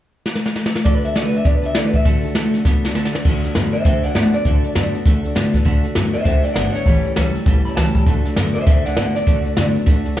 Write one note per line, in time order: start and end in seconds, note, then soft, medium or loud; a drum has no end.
0.26 snare medium
0.35 snare medium
0.46 snare medium
0.56 snare medium
0.66 snare medium
0.75 snare loud
0.85 1.04 D3 medium
0.85 1.04 A3 medium
0.85 1.05 D4 medium
0.85 1.04 F#4 medium
0.85 1.03 A4 medium
0.85 0.95 D5 loud
0.85 kick loud
0.85 closed hi-hat medium
0.95 1.05 B4 medium
1.04 1.16 D4 soft
1.04 1.16 F#4 soft
1.04 1.16 A4 medium
1.04 1.15 E5 medium
1.04 closed hi-hat medium
1.15 1.34 D3 medium
1.15 1.34 A3 medium
1.15 1.35 D4 medium
1.15 1.35 F#4 medium
1.15 1.32 A4 medium
1.15 1.25 D5 medium
1.15 snare loud
1.15 closed hi-hat medium
1.25 1.35 B4 medium
1.34 1.46 D4 soft
1.34 1.46 F#4 soft
1.34 1.45 A4 medium
1.34 1.46 E5 medium
1.34 closed hi-hat medium
1.45 1.74 D3 medium
1.45 1.64 A3 medium
1.45 1.75 B3 medium
1.45 1.65 D4 medium
1.45 1.64 F#4 medium
1.45 1.62 A4 medium
1.45 1.55 D5 medium
1.45 kick loud
1.45 closed hi-hat medium
1.55 1.65 B4 medium
1.63 1.75 D4 soft
1.63 1.76 F#4 soft
1.63 1.75 A4 medium
1.63 1.76 E5 medium
1.63 closed hi-hat medium
1.75 1.94 D3 medium
1.75 1.95 A3 medium
1.75 1.95 D4 medium
1.75 1.94 F#4 medium
1.75 1.92 A4 medium
1.75 1.86 D5 medium
1.75 snare loud
1.75 closed hi-hat medium
1.86 1.96 B4 medium
1.93 2.06 D4 soft
1.93 2.06 F#4 soft
1.93 2.05 A4 medium
1.93 2.05 E5 medium
1.93 kick medium
1.93 closed hi-hat medium
2.05 2.24 D3 medium
2.05 2.24 A3 medium
2.05 2.25 D4 medium
2.05 2.24 F#4 medium
2.05 2.64 A4 medium
2.05 2.23 A4 medium
2.05 kick loud
2.05 closed hi-hat medium
2.23 2.36 D4 soft
2.23 2.36 F#4 medium
2.23 2.36 A4 medium
2.23 closed hi-hat medium
2.35 2.54 D3 medium
2.35 2.55 A3 medium
2.35 2.55 D4 medium
2.35 2.55 F#4 medium
2.35 2.53 A4 medium
2.35 snare loud
2.35 closed hi-hat medium
2.54 2.67 F#4 medium
2.54 2.66 A4 medium
2.54 snare soft
2.54 closed hi-hat medium
2.58 2.66 D4 soft
2.65 2.94 D3 medium
2.65 2.84 A3 medium
2.65 2.95 B3 medium
2.65 2.85 D4 medium
2.65 2.85 F#4 medium
2.65 2.83 A4 medium
2.65 kick loud
2.65 snare medium
2.84 2.95 D4 soft
2.84 2.96 F#4 medium
2.84 2.96 A4 medium
2.84 snare medium
2.95 3.14 D3 medium
2.95 3.14 A3 medium
2.95 3.15 D4 medium
2.95 3.14 F#4 medium
2.95 3.13 A4 medium
2.95 snare medium
3.05 snare medium
3.14 3.26 D4 soft
3.14 3.26 F#4 medium
3.14 3.25 A4 medium
3.14 snare medium
3.25 3.43 D2 medium
3.25 3.44 D3 medium
3.25 3.45 A3 medium
3.25 3.45 D4 loud
3.25 3.45 F#4 loud
3.25 3.43 A4 medium
3.25 kick loud
3.25 crash medium
3.44 3.57 D4 soft
3.44 3.57 F#4 medium
3.44 3.56 A4 medium
3.44 muted upright bass stroke medium
3.44 snare soft
3.44 closed hi-hat medium
3.55 3.73 F#2 medium
3.55 3.75 D3 medium
3.55 3.75 A3 medium
3.55 3.83 B3 medium
3.55 3.75 D4 medium
3.55 3.75 F#4 loud
3.55 3.72 A4 loud
3.55 snare loud
3.55 closed hi-hat medium
3.72 3.87 F#4 soft
3.72 3.85 A4 soft
3.72 3.83 C5 medium
3.72 3.84 E5 medium
3.72 closed hi-hat medium
3.77 3.86 D4 soft
3.84 4.03 D2 medium
3.84 4.14 D3 medium
3.84 4.04 A3 medium
3.84 4.05 D4 medium
3.84 4.02 C5 medium
3.84 4.03 E5 medium
3.84 kick loud
3.84 closed hi-hat medium
3.88 4.05 F#4 medium
3.88 4.03 A4 medium
4.03 4.16 D4 soft
4.03 4.17 F#4 medium
4.03 4.16 A4 medium
4.03 4.13 D5 medium
4.03 4.14 F#5 medium
4.03 closed hi-hat medium
4.15 4.33 A2 loud
4.15 4.34 D3 medium
4.15 4.35 A3 medium
4.15 4.44 B3 medium
4.15 4.35 D4 medium
4.15 4.35 F#4 medium
4.15 4.32 D5 medium
4.15 4.33 F#5 medium
4.15 snare loud
4.15 closed hi-hat medium
4.19 4.33 A4 medium
4.34 4.46 D4 soft
4.34 4.47 F#4 medium
4.34 4.46 A4 medium
4.34 4.92 D5 medium
4.34 muted upright bass stroke medium
4.34 snare soft
4.34 closed hi-hat medium
4.45 4.63 D2 loud
4.45 4.64 D3 medium
4.45 4.65 A3 medium
4.45 4.65 D4 medium
4.45 4.65 F#4 medium
4.45 4.64 A4 loud
4.45 kick loud
4.45 closed hi-hat medium
4.64 4.76 D4 soft
4.64 4.76 F#4 soft
4.64 4.76 A4 medium
4.64 muted upright bass stroke medium
4.64 closed hi-hat medium
4.75 4.93 F#2 medium
4.75 4.94 D3 medium
4.75 4.95 A3 loud
4.75 5.04 B3 medium
4.75 4.95 D4 medium
4.75 4.94 F#4 loud
4.75 4.92 A4 loud
4.75 snare loud
4.75 closed hi-hat medium
4.93 5.06 D4 medium
4.93 5.06 F#4 medium
4.93 5.05 A4 medium
4.93 muted upright bass stroke medium
4.93 closed hi-hat medium
5.06 5.23 D2 loud
5.06 5.34 D3 medium
5.06 5.24 A3 medium
5.06 5.25 D4 medium
5.06 5.25 F#4 medium
5.06 5.23 A4 medium
5.06 kick loud
5.06 snare soft
5.06 closed hi-hat medium
5.24 5.35 D4 medium
5.24 5.35 F#4 medium
5.24 5.36 A4 medium
5.24 muted upright bass stroke medium
5.24 closed hi-hat medium
5.35 5.53 A2 medium
5.35 5.54 D3 medium
5.35 5.55 A3 medium
5.35 5.64 B3 loud
5.35 5.55 D4 loud
5.35 5.55 F#4 medium
5.35 5.53 A4 loud
5.35 snare loud
5.35 closed hi-hat medium
5.54 5.66 D4 soft
5.54 5.66 F#4 medium
5.54 5.66 A4 medium
5.54 muted upright bass stroke medium
5.54 kick medium
5.54 snare soft
5.54 closed hi-hat medium
5.65 5.83 D2 medium
5.65 5.84 D3 medium
5.65 5.85 A3 loud
5.65 5.85 D4 medium
5.65 5.84 F#4 medium
5.65 5.82 A4 loud
5.65 kick loud
5.65 closed hi-hat medium
5.84 5.95 D4 medium
5.84 5.96 F#4 medium
5.84 5.96 A4 medium
5.84 closed hi-hat medium
5.95 6.14 F#2 loud
5.95 6.14 D3 medium
5.95 6.14 A3 loud
5.95 6.24 B3 medium
5.95 6.15 D4 medium
5.95 6.15 F#4 loud
5.95 6.13 A4 loud
5.95 snare loud
5.95 closed hi-hat medium
6.13 6.26 D4 soft
6.13 6.26 F#4 soft
6.13 6.26 A4 medium
6.13 6.23 C5 medium
6.13 6.24 E5 loud
6.13 muted upright bass stroke medium
6.13 closed hi-hat medium
6.24 6.43 D2 loud
6.24 6.54 D3 medium
6.24 6.44 A3 medium
6.24 6.45 D4 medium
6.24 6.45 F#4 medium
6.24 6.42 C5 medium
6.24 6.43 E5 medium
6.24 kick loud
6.24 snare soft
6.24 closed hi-hat medium
6.29 6.43 A4 medium
6.43 6.56 F#4 medium
6.43 6.56 A4 medium
6.43 6.53 D5 medium
6.43 6.53 F#5 medium
6.43 snare soft
6.43 closed hi-hat medium
6.47 6.56 D4 soft
6.54 6.74 G1 medium
6.54 6.74 D3 medium
6.54 6.75 A3 medium
6.54 6.84 B3 medium
6.54 6.75 D4 medium
6.54 6.75 F#4 medium
6.54 6.72 D5 medium
6.54 6.73 F#5 medium
6.54 snare loud
6.54 closed hi-hat medium
6.58 6.74 A4 medium
6.72 6.86 A4 medium
6.72 7.32 C#5 loud
6.72 muted upright bass stroke medium
6.72 snare soft
6.72 closed hi-hat medium
6.77 6.88 D4 soft
6.77 6.87 F#4 soft
6.86 7.03 A1 medium
6.86 7.05 A2 medium
6.86 7.05 E3 medium
6.86 7.05 G3 medium
6.86 7.06 C#4 medium
6.86 7.05 G4 medium
6.86 7.04 A4 medium
6.86 kick loud
6.86 closed hi-hat medium
7.05 7.17 C#4 soft
7.05 7.17 G4 soft
7.05 7.17 A4 medium
7.05 muted upright bass stroke medium
7.05 closed hi-hat medium
7.09 7.16 G3 soft
7.16 7.34 C#2 medium
7.16 7.35 A2 medium
7.16 7.35 E3 medium
7.16 7.45 F#3 medium
7.16 7.35 G3 loud
7.16 7.36 C#4 loud
7.16 7.36 G4 medium
7.16 7.35 A4 loud
7.16 snare loud
7.16 closed hi-hat medium
7.35 7.45 G3 soft
7.35 7.46 C#4 medium
7.35 7.47 G4 medium
7.35 7.47 A4 medium
7.35 muted upright bass stroke medium
7.35 closed hi-hat medium
7.46 7.64 A1 loud
7.46 7.75 A2 medium
7.46 7.75 E3 medium
7.46 7.65 G3 medium
7.46 7.66 C#4 medium
7.46 7.66 G4 medium
7.46 7.65 A4 medium
7.46 kick loud
7.46 closed hi-hat medium
7.65 7.77 G3 soft
7.65 7.78 C#4 soft
7.65 7.78 G4 soft
7.65 7.77 A4 medium
7.65 7.76 B5 medium
7.65 muted upright bass stroke medium
7.65 closed hi-hat medium
7.76 7.94 C#2 medium
7.76 7.95 A2 medium
7.76 7.95 E3 medium
7.76 8.05 F#3 medium
7.76 7.96 G3 medium
7.76 7.96 C#4 medium
7.76 7.95 G4 medium
7.76 7.94 A4 medium
7.76 8.06 A5 loud
7.76 snare loud
7.76 closed hi-hat medium
7.95 8.07 G3 soft
7.95 8.08 C#4 soft
7.95 8.07 G4 medium
7.95 8.07 A4 medium
7.95 muted upright bass stroke medium
7.95 kick medium
7.95 closed hi-hat medium
8.07 8.24 D2 medium
8.07 8.25 D3 medium
8.07 8.26 A3 medium
8.07 8.26 D4 medium
8.07 8.26 F#4 medium
8.07 8.25 A4 medium
8.07 kick loud
8.07 closed hi-hat medium
8.25 8.37 D4 medium
8.25 8.37 F#4 medium
8.25 8.37 A4 medium
8.25 muted upright bass stroke medium
8.25 snare soft
8.25 closed hi-hat medium
8.37 8.54 F#2 medium
8.37 8.55 D3 medium
8.37 8.55 A3 loud
8.37 8.65 B3 medium
8.37 8.56 D4 medium
8.37 8.56 F#4 medium
8.37 8.54 A4 loud
8.37 snare loud
8.37 closed hi-hat medium
8.54 8.68 F#4 soft
8.54 8.67 A4 medium
8.54 8.65 C5 medium
8.54 8.66 E5 medium
8.54 muted upright bass stroke medium
8.54 closed hi-hat medium
8.59 8.67 D4 soft
8.66 8.84 D2 loud
8.66 8.95 D3 medium
8.66 8.85 A3 medium
8.66 8.86 D4 medium
8.66 8.85 F#4 medium
8.66 8.84 A4 medium
8.66 8.84 C5 medium
8.66 8.85 E5 medium
8.66 kick loud
8.66 snare soft
8.66 closed hi-hat medium
8.85 8.97 D4 soft
8.85 8.97 F#4 soft
8.85 8.97 A4 medium
8.85 8.95 D5 medium
8.85 8.96 F#5 medium
8.85 muted upright bass stroke medium
8.85 snare soft
8.85 closed hi-hat medium
8.96 9.14 A2 medium
8.96 9.16 D3 medium
8.96 9.16 A3 medium
8.96 9.25 B3 medium
8.96 9.16 D4 medium
8.96 9.17 F#4 medium
8.96 9.15 A4 medium
8.96 9.14 D5 medium
8.96 9.15 F#5 medium
8.96 snare loud
8.96 closed hi-hat medium
9.15 9.28 F#4 soft
9.15 9.27 A4 medium
9.15 9.74 D5 medium
9.15 muted upright bass stroke medium
9.15 snare soft
9.15 closed hi-hat medium
9.20 9.27 D4 soft
9.27 9.44 D2 medium
9.27 9.46 D3 medium
9.27 9.46 A3 medium
9.27 9.46 D4 medium
9.27 9.46 F#4 medium
9.27 9.45 A4 loud
9.27 kick loud
9.27 closed hi-hat medium
9.45 9.56 D4 soft
9.45 9.57 F#4 soft
9.45 9.57 A4 soft
9.45 muted upright bass stroke medium
9.45 closed hi-hat medium
9.57 9.75 F#2 medium
9.57 9.75 D3 loud
9.57 9.76 A3 medium
9.57 9.85 B3 medium
9.57 9.76 D4 loud
9.57 9.76 F#4 medium
9.57 9.74 A4 loud
9.57 snare loud
9.57 closed hi-hat medium
9.75 9.87 D4 medium
9.75 9.88 F#4 medium
9.75 9.87 A4 medium
9.75 muted upright bass stroke medium
9.75 closed hi-hat medium
9.86 10.05 D2 loud
9.86 10.14 D3 medium
9.86 10.06 A3 medium
9.86 10.06 D4 medium
9.86 10.06 F#4 medium
9.86 kick loud
9.86 closed hi-hat medium
9.90 10.04 A4 medium
10.05 10.17 D4 medium
10.05 10.18 F#4 medium
10.05 10.17 A4 medium
10.05 muted upright bass stroke medium
10.05 closed hi-hat medium
10.17 snare loud
10.17 closed hi-hat medium